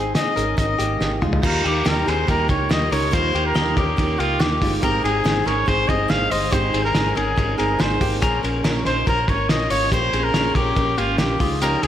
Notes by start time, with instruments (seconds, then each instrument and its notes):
Already playing: fingered electric bass G#1, steel-string acoustic guitar G#3 C4 D#4 G#4, clean electric guitar C4 G#4
0.15 steel-string acoustic guitar G#3 C4, clean electric guitar C4 G#4, trumpet D#5, snare, closed hi-hat
0.36 fingered electric bass G#1, steel-string acoustic guitar G#3 C4 D#4 G#4, clean electric guitar C#4 A#4, closed hi-hat
0.57 fingered electric bass G#1, steel-string acoustic guitar G#2 D#3 G#3 C4 D#4 G#4, trumpet D#5, kick, closed hi-hat
0.79 fingered electric bass G#1, steel-string acoustic guitar G#3 C4 D#4 G#4, clean electric guitar A#3 G4, closed hi-hat
1.00 fingered electric bass G#1, steel-string acoustic guitar G#3 C4 D#4 G#4, snare
1.22 fingered electric bass C#2, clean electric guitar G#3 F4, steel-string acoustic guitar G#3 C4 D#4 G#4, mid tom
1.33 floor tom
1.42 fingered electric bass D#2, steel-string acoustic guitar D#3 G3 A#3 D#4 F4, clean electric guitar A#3 F4, vibraphone G4, trumpet A#4, kick, crash
1.64 fingered electric bass D#2, clean electric guitar A#3 G4, steel-string acoustic guitar A#3 D#4 F4, trumpet G4, ride
1.85 fingered electric bass D#2, steel-string acoustic guitar D#3 G3 A#3 D#4 F4, clean electric guitar A#3 G4, trumpet A#4, snare, ride
2.06 fingered electric bass D#2, steel-string acoustic guitar A#3 D#4 F4, clean electric guitar C4 G#4, trumpet C5, snare, ride
2.27 fingered electric bass D#2, steel-string acoustic guitar G3 A#3 D#4 F4, clean electric guitar A#3 G4, trumpet A#4, kick, ride
2.48 fingered electric bass C#2, steel-string acoustic guitar A#3 D#4 F4, trumpet C#5, kick, ride
2.69 fingered electric bass D#2, steel-string acoustic guitar D#3 G3 A#3 D#4 F4, trumpet D#5, snare, ride
2.90 fingered electric bass C#2, steel-string acoustic guitar A#3 D#4 F4, clean electric guitar C#4 A#4, trumpet C#5, open hi-hat, ride
3.11 fingered electric bass D#2, steel-string acoustic guitar D#3 G3 A#3 D#4 F4, clean electric guitar A#3 F4, trumpet C5, kick, hi-hat pedal, ride
3.33 fingered electric bass D#2, steel-string acoustic guitar A#3 D#4 F4, clean electric guitar A#3 G4, ride
3.46 trumpet A#4
3.54 fingered electric bass D#2, steel-string acoustic guitar D#3 G3 A#3 F4, clean electric guitar A#3 G4, vibraphone D#4, snare, ride
3.76 fingered electric bass D#2, steel-string acoustic guitar A#3 D#4 F4, clean electric guitar C#4 A#4, trumpet G4, kick, ride
3.97 fingered electric bass D#2, steel-string acoustic guitar G3 A#3 D#4 F4, kick, ride
4.18 fingered electric bass C#2, steel-string acoustic guitar A#3 D#4 F4, clean electric guitar A#3 G4, trumpet F4, ride
4.39 fingered electric bass D#2, steel-string acoustic guitar D#3 G3 A#3 D#4 F4, trumpet G4, snare, ride
4.61 fingered electric bass G1, clean electric guitar G#3 F4, steel-string acoustic guitar A#3 D#4 F4, kick, open hi-hat, ride
4.82 fingered electric bass G#1, steel-string acoustic guitar G#2 D#3 G#3 C4 D#4 G#4, clean electric guitar C4 G4, vibraphone D#4, trumpet A#4, kick, hi-hat pedal, ride
5.03 fingered electric bass G#1, steel-string acoustic guitar G#3 C4 D#4 G#4, clean electric guitar C4 G#4, trumpet G#4, ride
5.24 fingered electric bass G#1, steel-string acoustic guitar G#2 D#3 G#3 C4 D#4 G#4, clean electric guitar C4 G#4, snare, ride
5.45 fingered electric bass G#1, steel-string acoustic guitar G#3 C4 D#4 G#4, clean electric guitar C#4 A#4, trumpet C#5, snare, ride
5.66 fingered electric bass G#1, steel-string acoustic guitar G#3 C4 D#4 G#4, clean electric guitar C4 G#4, trumpet C5, kick, ride
5.87 fingered electric bass G1, steel-string acoustic guitar G#3 C4 D#4 G#4, trumpet D#5, kick, ride
6.08 fingered electric bass G#1, steel-string acoustic guitar G#2 D#3 G#3 C4 D#4 G#4, trumpet F5, snare, ride
6.30 fingered electric bass G1, steel-string acoustic guitar G#3 C4 D#4 G#4, clean electric guitar D#4 C5, trumpet D#5, open hi-hat, ride
6.51 fingered electric bass G#1, steel-string acoustic guitar G#2 D#3 G#3 C4 D#4 G#4, clean electric guitar C4 G4, trumpet C5, kick, hi-hat pedal, ride
6.72 fingered electric bass G#1, steel-string acoustic guitar G#3 C4 D#4 G#4, clean electric guitar C4 G#4, ride
6.85 trumpet A#4
6.95 fingered electric bass G#1, steel-string acoustic guitar G#2 D#3 G#3 C4 D#4 G#4, clean electric guitar C4 G#4, snare, ride
7.15 fingered electric bass G#1, steel-string acoustic guitar C4 D#4 G#4, clean electric guitar C#4 A#4, trumpet G#4, ride
7.36 fingered electric bass G#1, steel-string acoustic guitar G#3 C4 D#4 G#4, kick, ride
7.58 fingered electric bass G1, steel-string acoustic guitar G#3 C4 D#4 G#4, clean electric guitar C4 G#4, trumpet A#4, ride
7.79 fingered electric bass G#1, steel-string acoustic guitar G#2 D#3 G#3 C4 D#4 G#4, trumpet C5, snare, ride
8.01 fingered electric bass G#1, steel-string acoustic guitar G#3 C4 D#4 G#4, clean electric guitar A#3 G4, kick, open hi-hat, ride
8.22 fingered electric bass A#1, steel-string acoustic guitar A#2 F3 A#3 C#4 F4, vibraphone C#4, clean electric guitar C#4 G#4, trumpet A#4, kick, hi-hat pedal, ride
8.43 fingered electric bass A#1, steel-string acoustic guitar A#3 C#4 F4, clean electric guitar C#4 A#4, ride
8.64 fingered electric bass A#1, steel-string acoustic guitar A#2 F3 A#3 C#4 F4, clean electric guitar C#4 A#4, snare, ride
8.85 fingered electric bass A#1, steel-string acoustic guitar A#3 C#4 F4, clean electric guitar D#4 C5, trumpet C5, snare, ride
9.06 fingered electric bass A#1, steel-string acoustic guitar F3 A#3 C#4 F4, clean electric guitar C#4 A#4, trumpet A#4, kick, ride
9.28 fingered electric bass G#1, steel-string acoustic guitar A#3 C#4 F4, trumpet C#5, kick, ride
9.49 fingered electric bass A#1, steel-string acoustic guitar A#2 F3 A#3 C#4 F4, trumpet D#5, snare, ride
9.70 fingered electric bass G#1, steel-string acoustic guitar A#3 C#4 F4, clean electric guitar F4 C#5, trumpet C#5, open hi-hat, ride
9.92 fingered electric bass A#1, steel-string acoustic guitar A#2 F3 A#3 C#4 F4, clean electric guitar A#3 G4, trumpet C5, kick, hi-hat pedal, ride
10.13 fingered electric bass A#1, steel-string acoustic guitar A#3 C#4 F4, clean electric guitar C4 G#4, ride
10.23 trumpet A#4
10.34 fingered electric bass A#1, steel-string acoustic guitar A#2 F3 A#3 C#4 F4, vibraphone C#4, clean electric guitar C#4 G#4, snare, ride
10.55 fingered electric bass A#1, steel-string acoustic guitar A#3 C#4 F4, clean electric guitar C#4 A#4, trumpet G4, kick, ride
10.76 fingered electric bass A#1, steel-string acoustic guitar F3 A#3 C#4 F4, kick, ride
10.97 fingered electric bass G#1, clean electric guitar A#3 G4, steel-string acoustic guitar A#3 C#4 F4, trumpet F4, ride
11.18 fingered electric bass A#1, steel-string acoustic guitar A#2 F3 A#3 C#4 F4, trumpet G4, snare, ride
11.39 fingered electric bass C#2, clean electric guitar G#3 F4, steel-string acoustic guitar G#3 C#4 F4, vibraphone D#4, kick, open hi-hat, ride
11.61 steel-string acoustic guitar C#3 F3 G#3 C#4 F4, clean electric guitar C#4 G4, trumpet A#4, hi-hat pedal, ride
11.82 fingered electric bass C#2, clean electric guitar C4 G#4, steel-string acoustic guitar C#4 F4, trumpet G#4, ride